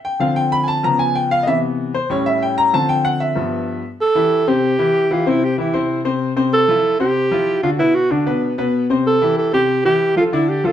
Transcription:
0.05 0.20 G5 medium
0.20 0.80 D3 medium
0.20 0.80 F3 medium
0.20 0.81 C4 medium
0.20 0.36 F5 medium
0.36 0.52 G5 loud
0.52 0.68 B5 loud
0.63 0.66 G#5 medium
0.68 0.83 A5 loud
0.83 1.44 C#3 medium
0.83 1.44 F3 medium
0.83 1.44 B3 medium
0.83 0.99 A#5 loud
0.99 1.15 G#5 loud
1.15 1.31 G5 medium
1.31 1.47 F5 loud
1.43 1.92 C3 medium
1.43 1.45 D#5 medium
1.47 1.92 E3 medium
1.47 1.92 B3 medium
1.47 1.57 E5 medium
1.94 2.10 C5 medium
2.10 2.70 A2 medium
2.10 2.70 G3 medium
2.10 2.70 C#4 medium
2.10 2.26 C#5 medium
2.26 2.41 E5 medium
2.43 2.57 G5 medium
2.58 2.73 A#5 loud
2.73 3.33 D3 medium
2.73 3.33 F3 medium
2.73 3.34 C4 medium
2.73 2.89 A5 loud
2.89 3.04 G5 loud
3.05 3.20 F#5 loud
3.20 3.87 E5 medium
3.35 3.81 G2 medium
3.35 3.81 F3 medium
3.35 3.82 B3 medium
4.01 4.50 A4 loud
4.15 4.41 E3 medium
4.15 4.41 E4 medium
4.15 4.42 G4 medium
4.47 4.73 C3 medium
4.47 4.73 C4 medium
4.47 5.14 G4 loud
4.47 4.73 C5 medium
4.79 5.04 E3 medium
4.79 5.05 E4 medium
4.79 5.05 G4 medium
5.11 5.23 E3 medium
5.11 5.23 E4 medium
5.11 5.30 F4 medium
5.11 5.24 G4 medium
5.26 5.52 C3 medium
5.26 5.52 C4 medium
5.26 5.45 E4 medium
5.26 5.52 C5 medium
5.44 5.58 G4 medium
5.58 5.71 E3 medium
5.58 5.71 E4 medium
5.58 6.03 E4 medium
5.58 5.71 G4 medium
5.73 5.99 C3 medium
5.73 5.99 C4 medium
5.73 6.00 C5 medium
6.05 6.31 C3 medium
6.05 6.31 C4 medium
6.05 6.31 C5 medium
6.36 6.62 C3 medium
6.36 6.63 C4 medium
6.36 6.63 C5 medium
6.53 6.97 A4 loud
6.68 6.94 F3 medium
6.68 6.94 E4 medium
6.68 6.94 F4 medium
6.99 7.25 C3 medium
6.99 7.26 C4 medium
6.99 7.59 G4 loud
6.99 7.26 C5 medium
7.31 7.57 F3 medium
7.31 7.58 E4 medium
7.31 7.58 F4 medium
7.63 7.76 D3 medium
7.63 7.76 D4 medium
7.63 7.70 F4 medium
7.63 7.76 F#4 medium
7.79 8.05 B2 medium
7.79 8.05 B3 medium
7.79 7.96 E4 loud
7.79 8.05 B4 medium
7.95 8.13 F#4 medium
8.11 8.24 D3 medium
8.11 8.24 D4 medium
8.11 8.58 D4 medium
8.11 8.24 F#4 medium
8.26 8.52 B2 medium
8.26 8.52 B3 medium
8.26 8.53 B4 medium
8.58 8.84 B2 medium
8.58 8.84 B3 medium
8.58 8.84 B4 medium
8.90 9.16 C3 medium
8.90 9.16 C4 medium
8.90 9.16 C5 medium
9.07 9.36 A4 loud
9.22 9.47 E3 medium
9.22 9.48 E4 medium
9.22 9.48 G4 medium
9.38 9.52 A4 medium
9.53 9.79 C3 medium
9.53 9.79 C4 medium
9.53 9.83 G4 loud
9.53 9.79 C5 medium
9.85 10.11 E3 medium
9.85 10.11 E4 medium
9.85 10.14 G4 loud
9.85 10.11 G4 medium
10.16 10.29 F3 medium
10.16 10.29 F4 medium
10.16 10.24 F4 medium
10.16 10.30 A4 medium
10.33 10.58 D3 medium
10.33 10.59 D4 medium
10.33 10.50 E4 medium
10.33 10.59 D5 medium
10.49 10.67 G4 medium
10.64 10.72 F3 medium
10.64 10.72 F4 medium
10.64 10.72 A4 medium

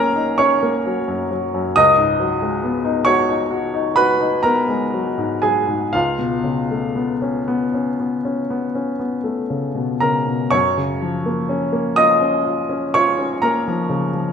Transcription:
0.00 1.71 B1 soft
0.00 0.86 F#3 soft
0.00 0.63 A#3 soft
0.00 0.39 C#4 soft
0.00 0.16 D#4 soft
0.00 1.77 F#4 medium
0.00 1.77 G#4 medium
0.00 0.36 A#4 medium
0.00 1.78 F#5 medium
0.00 1.77 G#5 medium
0.00 0.39 A#5 medium
0.16 0.53 D#4 soft
0.38 0.76 C#4 soft
0.38 1.27 C#5 medium
0.38 1.30 C#6 medium
0.63 1.00 A#3 soft
0.86 1.22 F#3 soft
1.08 1.44 F#2 soft
1.31 1.67 F#3 soft
1.54 1.76 F#2 soft
1.76 5.90 C#2 medium
1.76 3.02 D#5 medium
1.76 3.06 D#6 loud
1.98 2.32 G#2 soft
2.20 2.54 F#3 soft
2.42 2.76 G#3 soft
2.64 2.98 B3 soft
2.85 3.19 D#4 soft
3.05 3.41 F#4 soft
3.05 3.93 C#5 medium
3.05 3.96 C#6 medium
3.29 3.64 D#4 soft
3.51 3.87 F#4 soft
3.74 4.12 D#4 soft
3.96 4.35 F#4 soft
3.96 4.42 B4 medium
3.96 4.45 B5 medium
4.20 4.60 D#4 soft
4.43 4.84 B3 soft
4.43 5.39 A#4 medium
4.43 5.42 A#5 medium
4.69 5.09 G#3 soft
4.94 5.33 F#3 soft
5.18 5.58 G#2 soft
5.42 5.83 F#3 soft
5.42 5.90 G#4 soft
5.42 5.93 G#5 medium
5.67 5.93 G#2 soft
5.93 10.50 C#2 soft
5.93 8.97 F4 soft
5.93 9.01 F5 medium
6.19 6.60 B2 soft
6.44 6.86 C#3 soft
6.71 7.12 A3 soft
6.96 7.38 B3 soft
7.22 7.64 C#4 soft
7.48 7.90 B3 soft
7.74 8.16 C#4 soft
8.00 8.41 B3 soft
8.25 8.66 C#4 soft
8.50 8.91 B3 soft
8.75 9.15 C#4 soft
8.99 9.40 B3 soft
9.24 9.66 A3 soft
9.50 9.92 C#3 soft
9.75 10.17 B2 soft
10.00 10.43 C#3 soft
10.00 10.50 A#4 soft
10.00 10.53 A#5 medium
10.27 10.53 B2 soft
10.51 14.32 F#2 soft
10.51 11.93 C#5 medium
10.51 11.97 C#6 medium
10.77 11.17 C#3 soft
11.02 11.41 F3 soft
11.26 11.64 A#3 soft
11.49 11.88 C#4 soft
11.72 12.12 A#3 soft
11.96 12.36 F4 soft
11.96 12.91 D#5 medium
11.96 12.94 D#6 medium
12.21 12.60 C#4 soft
12.45 12.84 F4 soft
12.69 13.09 C#4 soft
12.94 13.34 F4 soft
12.94 13.40 C#5 medium
12.94 13.43 C#6 medium
13.19 13.58 C#4 soft
13.42 13.81 A#3 soft
13.42 14.32 A#4 medium
13.42 14.32 A#5 medium
13.68 14.05 F3 soft
13.89 14.27 C#3 soft
14.14 14.32 F3 soft

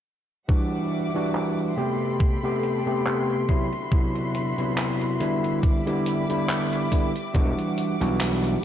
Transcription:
0.48 1.09 E3 medium
0.48 1.09 G3 medium
0.48 1.76 G3 medium
0.48 1.10 D4 medium
0.48 1.10 F#4 medium
0.48 1.76 E5 medium
0.48 1.76 F#5 medium
0.48 1.76 D6 medium
0.48 kick loud
0.48 closed hi-hat medium
0.73 closed hi-hat soft
0.92 closed hi-hat medium
1.14 1.72 E3 medium
1.14 1.73 G3 medium
1.14 1.73 D4 medium
1.14 1.73 F#4 medium
1.14 closed hi-hat soft
1.35 clap loud
1.59 closed hi-hat soft
1.77 2.38 C3 medium
1.77 2.38 A3 medium
1.77 2.38 B3 medium
1.77 2.38 G4 medium
1.77 3.47 A4 medium
1.77 3.47 G5 medium
1.77 3.47 B5 medium
1.77 5.59 C6 medium
1.77 closed hi-hat medium
2.01 closed hi-hat soft
2.20 kick loud
2.20 closed hi-hat medium
2.43 2.81 C3 medium
2.43 2.81 A3 medium
2.43 2.81 B3 medium
2.43 2.81 G4 medium
2.43 closed hi-hat soft
2.63 closed hi-hat medium
2.86 3.44 C3 medium
2.86 3.44 A3 medium
2.86 3.44 B3 medium
2.86 3.44 G4 medium
2.86 closed hi-hat soft
3.06 clap loud
3.06 closed hi-hat medium
3.30 closed hi-hat soft
3.48 3.67 C3 medium
3.48 5.61 D3 medium
3.48 3.68 F#3 medium
3.48 3.68 B3 medium
3.48 3.68 E4 medium
3.48 5.61 F#4 medium
3.48 8.59 E5 medium
3.48 5.61 B5 medium
3.48 kick medium
3.48 closed hi-hat medium
3.73 closed hi-hat soft
3.91 4.52 C3 medium
3.91 4.52 F#3 medium
3.91 4.53 B3 medium
3.91 4.53 E4 medium
3.91 kick loud
3.91 closed hi-hat medium
4.15 closed hi-hat soft
4.35 closed hi-hat medium
4.58 5.15 C3 medium
4.58 5.16 F#3 medium
4.58 5.16 B3 medium
4.58 5.16 E4 medium
4.58 closed hi-hat soft
4.78 clap loud
4.78 closed hi-hat medium
5.01 closed hi-hat soft
5.20 5.81 D3 medium
5.20 5.81 G3 medium
5.20 5.81 B3 medium
5.20 5.81 E4 medium
5.20 closed hi-hat medium
5.44 closed hi-hat soft
5.63 8.60 G3 medium
5.63 7.33 B5 medium
5.63 8.60 D6 medium
5.63 kick loud
5.63 closed hi-hat medium
5.86 6.23 D3 medium
5.86 6.24 G3 medium
5.86 6.24 B3 medium
5.86 6.24 E4 medium
5.86 closed hi-hat soft
6.06 closed hi-hat medium
6.29 6.87 D3 medium
6.29 6.87 G3 medium
6.29 6.87 B3 medium
6.29 6.87 E4 medium
6.29 closed hi-hat soft
6.49 clap loud
6.49 closed hi-hat medium
6.73 closed hi-hat soft
6.91 7.10 D3 medium
6.91 7.11 G3 medium
6.91 7.11 B3 medium
6.91 7.11 E4 medium
6.91 kick medium
6.91 closed hi-hat medium
7.16 closed hi-hat soft
7.34 7.52 E1 medium
7.34 7.95 E3 medium
7.34 7.95 G3 medium
7.34 7.95 D4 medium
7.34 7.96 F#4 medium
7.34 8.62 F#5 medium
7.34 kick loud
7.34 closed hi-hat medium
7.58 closed hi-hat soft
7.78 closed hi-hat medium
8.00 8.56 B1 medium
8.00 8.58 E3 medium
8.00 8.58 G3 medium
8.00 8.59 D4 medium
8.00 8.59 F#4 medium
8.00 closed hi-hat soft
8.21 clap loud
8.21 closed hi-hat medium
8.44 closed hi-hat soft

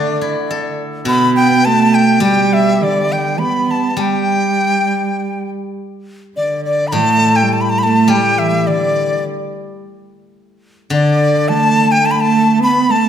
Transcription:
0.00 0.76 D3 medium
0.00 1.07 D3 medium
0.00 0.80 A3 soft
0.00 1.08 D4 soft
0.00 0.81 D5 medium
0.21 1.36 E4 soft
0.51 1.65 A4 soft
1.05 2.79 B2 medium
1.05 1.68 B3 medium
1.05 1.35 B5 medium
1.36 1.67 G5 medium
1.65 2.25 A3 medium
1.65 1.96 A5 medium
1.94 2.22 G5 medium
2.20 3.95 G3 medium
2.20 2.82 G3 medium
2.20 2.55 G5 medium
2.53 2.85 E5 medium
2.81 3.41 D3 medium
2.81 3.14 D5 medium
3.12 3.40 G5 medium
3.39 4.01 B3 medium
3.39 3.72 B5 medium
3.71 4.02 A5 medium
3.97 5.78 G3 medium
3.97 5.49 G3 medium
3.97 5.50 G5 medium
6.36 6.99 D3 medium
6.36 6.64 D5 medium
6.65 6.89 D5 medium
6.87 6.94 B5 medium
6.92 8.66 A2 medium
6.92 7.38 A5 loud
6.97 7.44 A3 medium
7.36 7.54 G5 medium
7.42 7.55 G3 medium
7.53 7.62 A5 medium
7.61 7.71 B5 medium
7.70 7.80 A5 medium
7.79 7.85 B5 medium
7.83 8.14 A3 medium
7.83 8.11 A5 medium
8.08 9.79 G3 medium
8.08 8.40 G5 medium
8.13 8.38 G3 medium
8.39 8.69 E3 medium
8.39 8.69 E5 medium
8.67 9.24 D3 medium
8.67 9.24 D5 medium
10.90 12.59 D3 medium
10.90 11.50 D5 medium
10.94 11.51 D3 medium
11.49 12.02 A3 medium
11.49 11.93 A5 loud
11.92 12.07 G5 medium
12.03 12.16 A3 medium
12.03 12.12 A5 medium
12.11 12.22 B5 medium
12.17 12.61 A3 medium
12.17 12.62 A5 medium
12.60 12.91 B3 medium
12.60 12.93 B5 medium
12.89 13.09 A3 medium
12.89 13.09 A5 medium

